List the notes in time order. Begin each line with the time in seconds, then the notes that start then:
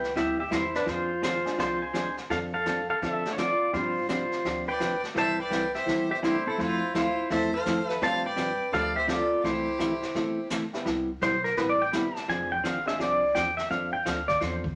Already playing: C2 B4 G5
0.03 snare
0.15 D2 C3 G3 B3 E4 G4 E5, brush sweep, kick, snare
0.40 G4 E5
0.51 E2 C3 G3 B3 E4 G4 C5, kick, snare, hi-hat pedal
0.74 D4 B4, snare
0.86 F2 F3 C4 D4 F4 G#4 C5, brush sweep, kick, snare
1.22 F3 C4 D4 F4 G#4 C5, kick, snare, hi-hat pedal
1.45 G#3 C4 D4 F4, snare
1.58 C2 F3 C4 D4 F4 G#4 C5, brush sweep, kick, snare
1.82 C5 G#5
1.93 F3 G#3 C4 D4 G#4, kick, snare, hi-hat pedal
2.17 snare
2.30 F2 F3 C4 D4 A4 F5, brush sweep, kick, snare
2.54 A4 F5
2.66 F3 C4 D4 A4, kick, snare, hi-hat pedal
2.90 A4 F5
3.02 D3 F3 C4 D4 A4 E5, brush sweep, kick, snare
3.25 A3 C4 D4 F4, snare
3.33 C#5
3.38 F3 C4 D4 F4 A4 D5, kick, snare, hi-hat pedal
3.73 G2 C3 F3 G3 C4 D4 F4 G4 C5, brush sweep, kick, snare
4.08 C3 F3 G3 C4 D4 F4 G4 C5, kick, snare, hi-hat pedal
4.32 snare
4.45 D2 C3 F3 C4 D4 G4, brush sweep, kick, snare
4.68 B4 D5 G5
4.80 C3 F3 C4 D4 G4, kick, snare, hi-hat pedal
5.03 snare
5.14 C2 C3 E3 G3 C4 E4 A4 C5 E5 A5, brush sweep, kick, snare
5.39 B4 D5 G5
5.51 C3 E3 G3 C4 E4 A4, kick, snare, hi-hat pedal
5.74 G4 C5 E5, snare
5.86 G1 C3 E3 G3 C4 E4 A4, brush sweep, kick, snare
6.11 G4 C5 E5
6.22 C3 E3 G3 A3 C4 D4 E4 G4 A4 C5, kick, snare, hi-hat pedal
6.47 C4 E4 A4
6.58 F2 F3 A3 C4 E4 A4 C5, brush sweep, kick, snare
6.62 F4
6.95 D2 F3 A3 C4 E4 F4 A4 C5, kick, snare, hi-hat pedal
7.30 E2 F3 A3 C4 E4 A4 C5 E5, brush sweep, kick, snare
7.54 A4 C5 F5
7.66 F2 F3 A3 C4 E4 A4, kick, snare, hi-hat pedal
7.87 B4 E5, snare
8.01 G2 C3 F3 G3 A3 C4 D4 F4 G4 C5 F5 A5, brush sweep, kick, snare
8.26 B4 D5 G5
8.36 C3 F3 C4 D4 G4, kick, snare, hi-hat pedal
8.72 D2 C3 F3 G3 A3 C4 D4 F4 G4 A4 D5 F5, brush sweep, kick, snare
8.96 G4 C5 E5
9.07 C3 F3 C4 D4 F4 G4 A4 D5, kick, snare, hi-hat pedal
9.44 C2 C3 E3 A3 E4 G4 A4 C5, brush sweep, kick, snare
9.79 C3 E3 G3 A3 C4 E4 A4, kick, snare, hi-hat pedal
10.02 snare
10.15 G1 C3 E3 A3 E4 A4, brush sweep, kick, snare
10.50 C3 E3 A3 E4 A4, kick, snare, hi-hat pedal
10.73 G3 B3 C4 E4, snare
10.85 C2 C3 G3 B3 E4 G4, brush sweep, kick, snare
11.22 B1 C3 G3 B3 E4 G4 C5, kick, snare, hi-hat pedal
11.44 A#4, snare
11.57 A1 C3 G3 B3 E4 G4 B4, brush sweep, kick, snare
11.69 D5
11.82 G5
11.92 G1 C3 G3 B3 C4 E4 G4 B5, kick, snare, hi-hat pedal
12.16 A5, snare
12.28 F1 F3 C4 D4 G#4 G#5, brush sweep, kick, snare
12.52 G5
12.64 G#1 F3 C4 D4 G#4 F5, kick, snare, hi-hat pedal
12.86 G#3 C4 D4 F4 G#4 E5, snare
12.99 C2 F3 C4 D4 G#4 D5, brush sweep, kick, snare
13.35 E2 F3 C4 D4 G#4 G5, kick, snare, hi-hat pedal
13.57 E5, snare
13.70 F2 F3 C4 D4 A4 F5, brush sweep, kick, snare
13.93 G5
14.05 D2 F3 C4 D4 A4 F5, kick, snare, hi-hat pedal
14.28 D5, kick, snare
14.41 E2 F3 C4 D4 A4 C5, brush sweep, kick, snare
14.64 kick